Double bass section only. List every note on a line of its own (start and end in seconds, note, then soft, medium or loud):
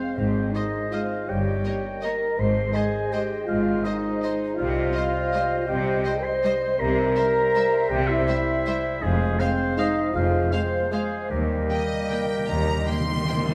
0.18 0.48 G#1 medium
1.30 1.59 G1 medium
2.39 2.69 G#1 medium
3.48 3.79 G#1 medium
4.59 4.89 C2 medium
5.68 5.99 C2 medium
6.79 7.10 C2 medium
7.90 8.21 C2 medium
9.02 9.33 F1 medium
10.14 10.45 F1 medium
11.30 11.62 D#2 medium
12.49 12.80 D#2 medium